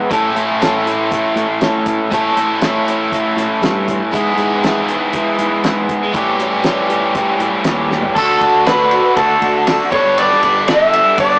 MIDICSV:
0, 0, Header, 1, 7, 480
1, 0, Start_track
1, 0, Tempo, 503778
1, 99, Time_signature, 4, 2, 24, 8
1, 10853, End_track
2, 0, Start_track
2, 0, Title_t, "Clean electric guitar"
2, 0, Program_c, 0, 27
2, 7765, Note_on_c, 0, 69, 81
2, 8256, Note_off_c, 0, 69, 0
2, 8260, Note_on_c, 0, 71, 90
2, 8731, Note_off_c, 0, 71, 0
2, 8735, Note_on_c, 0, 69, 78
2, 9419, Note_off_c, 0, 69, 0
2, 9451, Note_on_c, 0, 73, 91
2, 9678, Note_off_c, 0, 73, 0
2, 9707, Note_on_c, 0, 74, 95
2, 10175, Note_off_c, 0, 74, 0
2, 10179, Note_on_c, 0, 76, 111
2, 10666, Note_off_c, 0, 76, 0
2, 10670, Note_on_c, 0, 74, 88
2, 10853, Note_off_c, 0, 74, 0
2, 10853, End_track
3, 0, Start_track
3, 0, Title_t, "Overdriven electric guitar"
3, 0, Program_c, 1, 29
3, 0, Note_on_c, 1, 64, 90
3, 0, Note_on_c, 1, 71, 85
3, 102, Note_off_c, 1, 71, 0
3, 110, Note_off_c, 1, 64, 0
3, 7801, Note_on_c, 1, 69, 92
3, 9439, Note_on_c, 1, 55, 86
3, 9468, Note_off_c, 1, 69, 0
3, 9477, Note_on_c, 1, 71, 96
3, 10853, Note_off_c, 1, 55, 0
3, 10853, Note_off_c, 1, 71, 0
3, 10853, End_track
4, 0, Start_track
4, 0, Title_t, "String section"
4, 0, Program_c, 2, 48
4, 7781, Note_on_c, 2, 69, 74
4, 7782, Note_on_c, 2, 62, 76
4, 7782, Note_on_c, 2, 66, 75
4, 9444, Note_off_c, 2, 62, 0
4, 9444, Note_off_c, 2, 69, 0
4, 9445, Note_off_c, 2, 66, 0
4, 9456, Note_on_c, 2, 67, 78
4, 9465, Note_on_c, 2, 69, 80
4, 9469, Note_on_c, 2, 59, 74
4, 10853, Note_off_c, 2, 59, 0
4, 10853, Note_off_c, 2, 67, 0
4, 10853, Note_off_c, 2, 69, 0
4, 10853, End_track
5, 0, Start_track
5, 0, Title_t, "Steel-string acoustic guitar"
5, 0, Program_c, 3, 25
5, 0, Note_on_c, 3, 59, 45
5, 0, Note_on_c, 3, 64, 49
5, 103, Note_off_c, 3, 64, 0
5, 103, Note_on_c, 3, 45, 83
5, 103, Note_on_c, 3, 57, 89
5, 108, Note_off_c, 3, 59, 0
5, 113, Note_on_c, 3, 64, 95
5, 114, Note_on_c, 3, 61, 95
5, 118, Note_on_c, 3, 69, 94
5, 322, Note_off_c, 3, 69, 0
5, 331, Note_off_c, 3, 64, 0
5, 334, Note_on_c, 3, 69, 58
5, 340, Note_off_c, 3, 45, 0
5, 340, Note_off_c, 3, 57, 0
5, 342, Note_on_c, 3, 64, 51
5, 343, Note_off_c, 3, 61, 0
5, 355, Note_on_c, 3, 61, 45
5, 572, Note_off_c, 3, 61, 0
5, 575, Note_off_c, 3, 69, 0
5, 575, Note_on_c, 3, 45, 79
5, 577, Note_off_c, 3, 64, 0
5, 584, Note_on_c, 3, 57, 83
5, 584, Note_on_c, 3, 61, 85
5, 588, Note_on_c, 3, 64, 92
5, 593, Note_on_c, 3, 69, 82
5, 801, Note_off_c, 3, 69, 0
5, 812, Note_off_c, 3, 64, 0
5, 812, Note_on_c, 3, 69, 60
5, 816, Note_off_c, 3, 45, 0
5, 820, Note_off_c, 3, 57, 0
5, 820, Note_off_c, 3, 61, 0
5, 824, Note_on_c, 3, 64, 59
5, 837, Note_on_c, 3, 61, 50
5, 1051, Note_off_c, 3, 61, 0
5, 1054, Note_off_c, 3, 69, 0
5, 1059, Note_on_c, 3, 57, 59
5, 1060, Note_off_c, 3, 64, 0
5, 1062, Note_on_c, 3, 61, 59
5, 1076, Note_on_c, 3, 64, 65
5, 1082, Note_on_c, 3, 69, 70
5, 1279, Note_off_c, 3, 69, 0
5, 1291, Note_off_c, 3, 64, 0
5, 1291, Note_on_c, 3, 69, 55
5, 1298, Note_off_c, 3, 57, 0
5, 1299, Note_off_c, 3, 61, 0
5, 1303, Note_on_c, 3, 64, 55
5, 1315, Note_on_c, 3, 61, 43
5, 1529, Note_off_c, 3, 61, 0
5, 1533, Note_off_c, 3, 69, 0
5, 1535, Note_on_c, 3, 45, 80
5, 1536, Note_off_c, 3, 64, 0
5, 1540, Note_on_c, 3, 61, 85
5, 1544, Note_on_c, 3, 57, 80
5, 1547, Note_on_c, 3, 64, 92
5, 1550, Note_on_c, 3, 69, 87
5, 1756, Note_off_c, 3, 69, 0
5, 1768, Note_on_c, 3, 69, 56
5, 1773, Note_off_c, 3, 64, 0
5, 1775, Note_off_c, 3, 45, 0
5, 1778, Note_off_c, 3, 61, 0
5, 1780, Note_off_c, 3, 57, 0
5, 1784, Note_on_c, 3, 64, 54
5, 1792, Note_on_c, 3, 61, 49
5, 2012, Note_off_c, 3, 69, 0
5, 2015, Note_off_c, 3, 61, 0
5, 2015, Note_on_c, 3, 45, 88
5, 2020, Note_off_c, 3, 64, 0
5, 2025, Note_on_c, 3, 57, 90
5, 2026, Note_on_c, 3, 61, 92
5, 2036, Note_on_c, 3, 64, 90
5, 2036, Note_on_c, 3, 69, 101
5, 2249, Note_off_c, 3, 69, 0
5, 2255, Note_off_c, 3, 45, 0
5, 2260, Note_off_c, 3, 64, 0
5, 2261, Note_off_c, 3, 57, 0
5, 2261, Note_off_c, 3, 61, 0
5, 2261, Note_on_c, 3, 69, 56
5, 2271, Note_on_c, 3, 64, 53
5, 2287, Note_on_c, 3, 61, 51
5, 2496, Note_off_c, 3, 61, 0
5, 2497, Note_on_c, 3, 45, 80
5, 2498, Note_off_c, 3, 69, 0
5, 2501, Note_off_c, 3, 64, 0
5, 2501, Note_on_c, 3, 57, 90
5, 2507, Note_on_c, 3, 61, 90
5, 2512, Note_on_c, 3, 64, 85
5, 2514, Note_on_c, 3, 69, 96
5, 2724, Note_off_c, 3, 69, 0
5, 2735, Note_on_c, 3, 69, 65
5, 2736, Note_off_c, 3, 45, 0
5, 2738, Note_off_c, 3, 57, 0
5, 2741, Note_off_c, 3, 61, 0
5, 2741, Note_off_c, 3, 64, 0
5, 2752, Note_on_c, 3, 64, 52
5, 2762, Note_on_c, 3, 61, 50
5, 2967, Note_off_c, 3, 61, 0
5, 2971, Note_on_c, 3, 57, 61
5, 2974, Note_off_c, 3, 64, 0
5, 2975, Note_off_c, 3, 69, 0
5, 2979, Note_on_c, 3, 61, 64
5, 2985, Note_on_c, 3, 64, 65
5, 2991, Note_on_c, 3, 69, 65
5, 3195, Note_off_c, 3, 69, 0
5, 3206, Note_on_c, 3, 69, 58
5, 3209, Note_off_c, 3, 64, 0
5, 3213, Note_off_c, 3, 57, 0
5, 3217, Note_off_c, 3, 61, 0
5, 3221, Note_on_c, 3, 64, 51
5, 3232, Note_on_c, 3, 61, 47
5, 3441, Note_off_c, 3, 61, 0
5, 3444, Note_off_c, 3, 69, 0
5, 3445, Note_off_c, 3, 64, 0
5, 3448, Note_on_c, 3, 45, 85
5, 3451, Note_on_c, 3, 57, 84
5, 3453, Note_on_c, 3, 61, 85
5, 3455, Note_on_c, 3, 69, 97
5, 3456, Note_on_c, 3, 64, 91
5, 3672, Note_off_c, 3, 69, 0
5, 3682, Note_off_c, 3, 64, 0
5, 3683, Note_on_c, 3, 69, 62
5, 3692, Note_off_c, 3, 45, 0
5, 3693, Note_off_c, 3, 57, 0
5, 3693, Note_on_c, 3, 64, 52
5, 3694, Note_off_c, 3, 61, 0
5, 3709, Note_on_c, 3, 61, 54
5, 3916, Note_on_c, 3, 56, 89
5, 3919, Note_off_c, 3, 61, 0
5, 3921, Note_off_c, 3, 64, 0
5, 3922, Note_on_c, 3, 59, 92
5, 3929, Note_off_c, 3, 69, 0
5, 3933, Note_on_c, 3, 64, 90
5, 3936, Note_on_c, 3, 68, 87
5, 4150, Note_off_c, 3, 68, 0
5, 4160, Note_off_c, 3, 64, 0
5, 4162, Note_on_c, 3, 68, 58
5, 4166, Note_off_c, 3, 56, 0
5, 4169, Note_off_c, 3, 59, 0
5, 4172, Note_on_c, 3, 64, 53
5, 4183, Note_on_c, 3, 59, 49
5, 4405, Note_off_c, 3, 59, 0
5, 4409, Note_off_c, 3, 68, 0
5, 4411, Note_off_c, 3, 64, 0
5, 4413, Note_on_c, 3, 56, 79
5, 4416, Note_on_c, 3, 59, 78
5, 4423, Note_on_c, 3, 64, 89
5, 4427, Note_on_c, 3, 68, 82
5, 4641, Note_off_c, 3, 68, 0
5, 4652, Note_on_c, 3, 68, 55
5, 4655, Note_off_c, 3, 56, 0
5, 4656, Note_off_c, 3, 59, 0
5, 4659, Note_off_c, 3, 64, 0
5, 4671, Note_on_c, 3, 64, 52
5, 4672, Note_on_c, 3, 59, 49
5, 4888, Note_off_c, 3, 59, 0
5, 4889, Note_on_c, 3, 56, 62
5, 4890, Note_off_c, 3, 64, 0
5, 4894, Note_off_c, 3, 68, 0
5, 4900, Note_on_c, 3, 59, 59
5, 4901, Note_on_c, 3, 64, 68
5, 4910, Note_on_c, 3, 68, 66
5, 5118, Note_off_c, 3, 68, 0
5, 5130, Note_on_c, 3, 68, 64
5, 5131, Note_off_c, 3, 64, 0
5, 5133, Note_off_c, 3, 56, 0
5, 5138, Note_off_c, 3, 59, 0
5, 5143, Note_on_c, 3, 64, 52
5, 5150, Note_on_c, 3, 59, 50
5, 5364, Note_off_c, 3, 59, 0
5, 5367, Note_off_c, 3, 64, 0
5, 5371, Note_on_c, 3, 56, 81
5, 5373, Note_off_c, 3, 68, 0
5, 5375, Note_on_c, 3, 59, 85
5, 5378, Note_on_c, 3, 64, 91
5, 5385, Note_on_c, 3, 68, 93
5, 5600, Note_off_c, 3, 68, 0
5, 5609, Note_off_c, 3, 64, 0
5, 5612, Note_on_c, 3, 68, 55
5, 5614, Note_off_c, 3, 56, 0
5, 5616, Note_off_c, 3, 59, 0
5, 5621, Note_on_c, 3, 64, 58
5, 5632, Note_on_c, 3, 59, 47
5, 5839, Note_on_c, 3, 45, 90
5, 5847, Note_off_c, 3, 59, 0
5, 5848, Note_on_c, 3, 52, 85
5, 5850, Note_off_c, 3, 64, 0
5, 5851, Note_on_c, 3, 55, 91
5, 5853, Note_off_c, 3, 68, 0
5, 5854, Note_on_c, 3, 61, 88
5, 5857, Note_on_c, 3, 67, 92
5, 6082, Note_off_c, 3, 67, 0
5, 6088, Note_off_c, 3, 45, 0
5, 6093, Note_off_c, 3, 52, 0
5, 6093, Note_on_c, 3, 67, 59
5, 6094, Note_off_c, 3, 55, 0
5, 6095, Note_off_c, 3, 61, 0
5, 6108, Note_on_c, 3, 61, 54
5, 6109, Note_on_c, 3, 55, 46
5, 6315, Note_off_c, 3, 55, 0
5, 6318, Note_on_c, 3, 45, 82
5, 6319, Note_off_c, 3, 67, 0
5, 6320, Note_off_c, 3, 61, 0
5, 6325, Note_on_c, 3, 52, 77
5, 6326, Note_on_c, 3, 55, 88
5, 6331, Note_on_c, 3, 67, 92
5, 6332, Note_on_c, 3, 61, 87
5, 6552, Note_off_c, 3, 67, 0
5, 6561, Note_off_c, 3, 61, 0
5, 6564, Note_on_c, 3, 67, 57
5, 6568, Note_off_c, 3, 45, 0
5, 6569, Note_off_c, 3, 55, 0
5, 6571, Note_off_c, 3, 52, 0
5, 6573, Note_on_c, 3, 61, 53
5, 6580, Note_on_c, 3, 55, 48
5, 6799, Note_on_c, 3, 52, 60
5, 6802, Note_off_c, 3, 55, 0
5, 6807, Note_off_c, 3, 61, 0
5, 6811, Note_off_c, 3, 67, 0
5, 6813, Note_on_c, 3, 55, 66
5, 6818, Note_on_c, 3, 61, 60
5, 6826, Note_on_c, 3, 67, 74
5, 7028, Note_off_c, 3, 67, 0
5, 7040, Note_on_c, 3, 67, 58
5, 7041, Note_off_c, 3, 61, 0
5, 7049, Note_off_c, 3, 52, 0
5, 7049, Note_off_c, 3, 55, 0
5, 7052, Note_on_c, 3, 61, 55
5, 7060, Note_on_c, 3, 55, 46
5, 7288, Note_off_c, 3, 55, 0
5, 7289, Note_off_c, 3, 67, 0
5, 7292, Note_on_c, 3, 45, 78
5, 7295, Note_off_c, 3, 61, 0
5, 7297, Note_on_c, 3, 52, 84
5, 7299, Note_on_c, 3, 55, 84
5, 7306, Note_on_c, 3, 61, 86
5, 7310, Note_on_c, 3, 67, 95
5, 7523, Note_off_c, 3, 67, 0
5, 7532, Note_off_c, 3, 61, 0
5, 7535, Note_off_c, 3, 45, 0
5, 7535, Note_on_c, 3, 67, 61
5, 7538, Note_off_c, 3, 52, 0
5, 7539, Note_off_c, 3, 55, 0
5, 7543, Note_on_c, 3, 61, 52
5, 7553, Note_on_c, 3, 55, 47
5, 7777, Note_off_c, 3, 67, 0
5, 7780, Note_off_c, 3, 55, 0
5, 7781, Note_off_c, 3, 61, 0
5, 7781, Note_on_c, 3, 50, 76
5, 7784, Note_on_c, 3, 57, 78
5, 7787, Note_on_c, 3, 62, 86
5, 7795, Note_on_c, 3, 66, 86
5, 8003, Note_off_c, 3, 66, 0
5, 8012, Note_off_c, 3, 62, 0
5, 8014, Note_on_c, 3, 66, 52
5, 8020, Note_off_c, 3, 50, 0
5, 8022, Note_off_c, 3, 57, 0
5, 8023, Note_on_c, 3, 62, 49
5, 8042, Note_on_c, 3, 57, 42
5, 8249, Note_on_c, 3, 50, 57
5, 8250, Note_off_c, 3, 57, 0
5, 8255, Note_off_c, 3, 62, 0
5, 8257, Note_off_c, 3, 66, 0
5, 8262, Note_on_c, 3, 57, 57
5, 8267, Note_on_c, 3, 62, 65
5, 8273, Note_on_c, 3, 66, 64
5, 8488, Note_off_c, 3, 66, 0
5, 8494, Note_off_c, 3, 50, 0
5, 8496, Note_off_c, 3, 62, 0
5, 8500, Note_off_c, 3, 57, 0
5, 8500, Note_on_c, 3, 66, 59
5, 8508, Note_on_c, 3, 62, 52
5, 8516, Note_on_c, 3, 57, 41
5, 8739, Note_off_c, 3, 66, 0
5, 8740, Note_off_c, 3, 57, 0
5, 8744, Note_off_c, 3, 62, 0
5, 8747, Note_on_c, 3, 50, 72
5, 8752, Note_on_c, 3, 57, 82
5, 8754, Note_on_c, 3, 62, 76
5, 8763, Note_on_c, 3, 66, 84
5, 8964, Note_off_c, 3, 66, 0
5, 8975, Note_on_c, 3, 66, 56
5, 8976, Note_off_c, 3, 62, 0
5, 8983, Note_off_c, 3, 50, 0
5, 8986, Note_off_c, 3, 57, 0
5, 8987, Note_on_c, 3, 62, 49
5, 8998, Note_on_c, 3, 57, 41
5, 9206, Note_off_c, 3, 57, 0
5, 9211, Note_on_c, 3, 50, 64
5, 9215, Note_off_c, 3, 62, 0
5, 9217, Note_off_c, 3, 66, 0
5, 9217, Note_on_c, 3, 57, 59
5, 9226, Note_on_c, 3, 62, 63
5, 9236, Note_on_c, 3, 66, 69
5, 9452, Note_off_c, 3, 66, 0
5, 9455, Note_off_c, 3, 50, 0
5, 9456, Note_on_c, 3, 69, 55
5, 9458, Note_off_c, 3, 57, 0
5, 9461, Note_off_c, 3, 62, 0
5, 9472, Note_on_c, 3, 62, 51
5, 9478, Note_on_c, 3, 59, 43
5, 9696, Note_off_c, 3, 59, 0
5, 9698, Note_off_c, 3, 69, 0
5, 9699, Note_off_c, 3, 62, 0
5, 9700, Note_on_c, 3, 55, 76
5, 9707, Note_on_c, 3, 59, 77
5, 9711, Note_on_c, 3, 62, 82
5, 9717, Note_on_c, 3, 69, 93
5, 9924, Note_off_c, 3, 69, 0
5, 9936, Note_on_c, 3, 69, 58
5, 9937, Note_off_c, 3, 62, 0
5, 9939, Note_off_c, 3, 55, 0
5, 9943, Note_off_c, 3, 59, 0
5, 9949, Note_on_c, 3, 62, 53
5, 9956, Note_on_c, 3, 59, 43
5, 10164, Note_off_c, 3, 59, 0
5, 10170, Note_on_c, 3, 55, 56
5, 10174, Note_off_c, 3, 62, 0
5, 10175, Note_on_c, 3, 59, 60
5, 10178, Note_off_c, 3, 69, 0
5, 10185, Note_on_c, 3, 62, 63
5, 10188, Note_on_c, 3, 69, 64
5, 10399, Note_off_c, 3, 69, 0
5, 10411, Note_on_c, 3, 69, 56
5, 10412, Note_off_c, 3, 62, 0
5, 10415, Note_off_c, 3, 55, 0
5, 10417, Note_off_c, 3, 59, 0
5, 10423, Note_on_c, 3, 62, 55
5, 10432, Note_on_c, 3, 59, 50
5, 10637, Note_off_c, 3, 59, 0
5, 10645, Note_off_c, 3, 62, 0
5, 10646, Note_on_c, 3, 55, 76
5, 10649, Note_on_c, 3, 59, 74
5, 10650, Note_off_c, 3, 69, 0
5, 10657, Note_on_c, 3, 62, 82
5, 10662, Note_on_c, 3, 69, 88
5, 10853, Note_off_c, 3, 55, 0
5, 10853, Note_off_c, 3, 59, 0
5, 10853, Note_off_c, 3, 62, 0
5, 10853, Note_off_c, 3, 69, 0
5, 10853, End_track
6, 0, Start_track
6, 0, Title_t, "Fingered electric bass"
6, 0, Program_c, 4, 33
6, 103, Note_on_c, 4, 45, 102
6, 281, Note_off_c, 4, 45, 0
6, 344, Note_on_c, 4, 45, 87
6, 1062, Note_off_c, 4, 45, 0
6, 1292, Note_on_c, 4, 45, 86
6, 1384, Note_off_c, 4, 45, 0
6, 1539, Note_on_c, 4, 45, 88
6, 1898, Note_off_c, 4, 45, 0
6, 2018, Note_on_c, 4, 45, 106
6, 2197, Note_off_c, 4, 45, 0
6, 2253, Note_on_c, 4, 45, 87
6, 2975, Note_off_c, 4, 45, 0
6, 3208, Note_on_c, 4, 45, 85
6, 3301, Note_off_c, 4, 45, 0
6, 3445, Note_on_c, 4, 43, 91
6, 3809, Note_off_c, 4, 43, 0
6, 3931, Note_on_c, 4, 44, 106
6, 4113, Note_off_c, 4, 44, 0
6, 4167, Note_on_c, 4, 44, 88
6, 4892, Note_off_c, 4, 44, 0
6, 5131, Note_on_c, 4, 44, 84
6, 5223, Note_off_c, 4, 44, 0
6, 5369, Note_on_c, 4, 44, 81
6, 5733, Note_off_c, 4, 44, 0
6, 5851, Note_on_c, 4, 45, 102
6, 6034, Note_off_c, 4, 45, 0
6, 6085, Note_on_c, 4, 45, 82
6, 6811, Note_off_c, 4, 45, 0
6, 7047, Note_on_c, 4, 45, 85
6, 7142, Note_off_c, 4, 45, 0
6, 7281, Note_on_c, 4, 39, 84
6, 7649, Note_off_c, 4, 39, 0
6, 7777, Note_on_c, 4, 38, 91
6, 7958, Note_off_c, 4, 38, 0
6, 8013, Note_on_c, 4, 38, 98
6, 8556, Note_off_c, 4, 38, 0
6, 8734, Note_on_c, 4, 38, 91
6, 8916, Note_off_c, 4, 38, 0
6, 8977, Note_on_c, 4, 38, 88
6, 9338, Note_off_c, 4, 38, 0
6, 9455, Note_on_c, 4, 31, 88
6, 9817, Note_off_c, 4, 31, 0
6, 9931, Note_on_c, 4, 31, 87
6, 10475, Note_off_c, 4, 31, 0
6, 10652, Note_on_c, 4, 31, 95
6, 10835, Note_off_c, 4, 31, 0
6, 10853, End_track
7, 0, Start_track
7, 0, Title_t, "Drums"
7, 102, Note_on_c, 9, 36, 110
7, 104, Note_on_c, 9, 42, 81
7, 198, Note_off_c, 9, 36, 0
7, 200, Note_off_c, 9, 42, 0
7, 346, Note_on_c, 9, 42, 58
7, 441, Note_off_c, 9, 42, 0
7, 590, Note_on_c, 9, 42, 76
7, 597, Note_on_c, 9, 38, 97
7, 685, Note_off_c, 9, 42, 0
7, 693, Note_off_c, 9, 38, 0
7, 829, Note_on_c, 9, 42, 60
7, 925, Note_off_c, 9, 42, 0
7, 1061, Note_on_c, 9, 36, 104
7, 1064, Note_on_c, 9, 42, 78
7, 1157, Note_off_c, 9, 36, 0
7, 1160, Note_off_c, 9, 42, 0
7, 1303, Note_on_c, 9, 42, 59
7, 1398, Note_off_c, 9, 42, 0
7, 1535, Note_on_c, 9, 42, 79
7, 1543, Note_on_c, 9, 38, 112
7, 1630, Note_off_c, 9, 42, 0
7, 1638, Note_off_c, 9, 38, 0
7, 1772, Note_on_c, 9, 42, 64
7, 1775, Note_on_c, 9, 36, 89
7, 1867, Note_off_c, 9, 42, 0
7, 1870, Note_off_c, 9, 36, 0
7, 2015, Note_on_c, 9, 36, 113
7, 2018, Note_on_c, 9, 42, 85
7, 2110, Note_off_c, 9, 36, 0
7, 2113, Note_off_c, 9, 42, 0
7, 2258, Note_on_c, 9, 42, 60
7, 2353, Note_off_c, 9, 42, 0
7, 2492, Note_on_c, 9, 42, 83
7, 2499, Note_on_c, 9, 38, 105
7, 2587, Note_off_c, 9, 42, 0
7, 2594, Note_off_c, 9, 38, 0
7, 2744, Note_on_c, 9, 42, 61
7, 2840, Note_off_c, 9, 42, 0
7, 2975, Note_on_c, 9, 36, 100
7, 2981, Note_on_c, 9, 42, 77
7, 3070, Note_off_c, 9, 36, 0
7, 3076, Note_off_c, 9, 42, 0
7, 3221, Note_on_c, 9, 42, 64
7, 3229, Note_on_c, 9, 38, 34
7, 3317, Note_off_c, 9, 42, 0
7, 3324, Note_off_c, 9, 38, 0
7, 3459, Note_on_c, 9, 42, 80
7, 3467, Note_on_c, 9, 38, 106
7, 3555, Note_off_c, 9, 42, 0
7, 3562, Note_off_c, 9, 38, 0
7, 3695, Note_on_c, 9, 36, 91
7, 3698, Note_on_c, 9, 42, 65
7, 3790, Note_off_c, 9, 36, 0
7, 3794, Note_off_c, 9, 42, 0
7, 3936, Note_on_c, 9, 36, 109
7, 3940, Note_on_c, 9, 42, 79
7, 4031, Note_off_c, 9, 36, 0
7, 4035, Note_off_c, 9, 42, 0
7, 4171, Note_on_c, 9, 42, 54
7, 4266, Note_off_c, 9, 42, 0
7, 4418, Note_on_c, 9, 42, 76
7, 4425, Note_on_c, 9, 38, 107
7, 4513, Note_off_c, 9, 42, 0
7, 4521, Note_off_c, 9, 38, 0
7, 4654, Note_on_c, 9, 42, 55
7, 4750, Note_off_c, 9, 42, 0
7, 4890, Note_on_c, 9, 42, 75
7, 4894, Note_on_c, 9, 36, 98
7, 4985, Note_off_c, 9, 42, 0
7, 4989, Note_off_c, 9, 36, 0
7, 5133, Note_on_c, 9, 42, 61
7, 5228, Note_off_c, 9, 42, 0
7, 5373, Note_on_c, 9, 42, 85
7, 5381, Note_on_c, 9, 38, 109
7, 5468, Note_off_c, 9, 42, 0
7, 5476, Note_off_c, 9, 38, 0
7, 5612, Note_on_c, 9, 36, 93
7, 5613, Note_on_c, 9, 42, 65
7, 5708, Note_off_c, 9, 36, 0
7, 5709, Note_off_c, 9, 42, 0
7, 5852, Note_on_c, 9, 36, 115
7, 5852, Note_on_c, 9, 42, 83
7, 5947, Note_off_c, 9, 36, 0
7, 5947, Note_off_c, 9, 42, 0
7, 6094, Note_on_c, 9, 42, 58
7, 6190, Note_off_c, 9, 42, 0
7, 6323, Note_on_c, 9, 42, 84
7, 6331, Note_on_c, 9, 38, 102
7, 6419, Note_off_c, 9, 42, 0
7, 6426, Note_off_c, 9, 38, 0
7, 6574, Note_on_c, 9, 42, 62
7, 6669, Note_off_c, 9, 42, 0
7, 6812, Note_on_c, 9, 36, 100
7, 6812, Note_on_c, 9, 42, 80
7, 6907, Note_off_c, 9, 36, 0
7, 6907, Note_off_c, 9, 42, 0
7, 7051, Note_on_c, 9, 42, 65
7, 7146, Note_off_c, 9, 42, 0
7, 7282, Note_on_c, 9, 42, 89
7, 7290, Note_on_c, 9, 38, 111
7, 7377, Note_off_c, 9, 42, 0
7, 7385, Note_off_c, 9, 38, 0
7, 7541, Note_on_c, 9, 38, 62
7, 7636, Note_off_c, 9, 38, 0
7, 7646, Note_on_c, 9, 43, 77
7, 7741, Note_off_c, 9, 43, 0
7, 7774, Note_on_c, 9, 36, 111
7, 7777, Note_on_c, 9, 49, 109
7, 7869, Note_off_c, 9, 36, 0
7, 7872, Note_off_c, 9, 49, 0
7, 8013, Note_on_c, 9, 36, 79
7, 8016, Note_on_c, 9, 51, 64
7, 8108, Note_off_c, 9, 36, 0
7, 8111, Note_off_c, 9, 51, 0
7, 8256, Note_on_c, 9, 51, 84
7, 8263, Note_on_c, 9, 38, 109
7, 8351, Note_off_c, 9, 51, 0
7, 8359, Note_off_c, 9, 38, 0
7, 8490, Note_on_c, 9, 51, 66
7, 8585, Note_off_c, 9, 51, 0
7, 8733, Note_on_c, 9, 36, 105
7, 8735, Note_on_c, 9, 51, 86
7, 8829, Note_off_c, 9, 36, 0
7, 8830, Note_off_c, 9, 51, 0
7, 8973, Note_on_c, 9, 36, 78
7, 8975, Note_on_c, 9, 51, 74
7, 9069, Note_off_c, 9, 36, 0
7, 9070, Note_off_c, 9, 51, 0
7, 9214, Note_on_c, 9, 51, 98
7, 9221, Note_on_c, 9, 38, 118
7, 9309, Note_off_c, 9, 51, 0
7, 9316, Note_off_c, 9, 38, 0
7, 9452, Note_on_c, 9, 51, 72
7, 9454, Note_on_c, 9, 36, 111
7, 9548, Note_off_c, 9, 51, 0
7, 9549, Note_off_c, 9, 36, 0
7, 9697, Note_on_c, 9, 51, 98
7, 9792, Note_off_c, 9, 51, 0
7, 9827, Note_on_c, 9, 38, 33
7, 9923, Note_off_c, 9, 38, 0
7, 9935, Note_on_c, 9, 51, 72
7, 9936, Note_on_c, 9, 36, 84
7, 10031, Note_off_c, 9, 36, 0
7, 10031, Note_off_c, 9, 51, 0
7, 10174, Note_on_c, 9, 51, 90
7, 10182, Note_on_c, 9, 38, 106
7, 10269, Note_off_c, 9, 51, 0
7, 10277, Note_off_c, 9, 38, 0
7, 10418, Note_on_c, 9, 51, 73
7, 10513, Note_off_c, 9, 51, 0
7, 10650, Note_on_c, 9, 51, 92
7, 10653, Note_on_c, 9, 36, 108
7, 10746, Note_off_c, 9, 51, 0
7, 10748, Note_off_c, 9, 36, 0
7, 10853, End_track
0, 0, End_of_file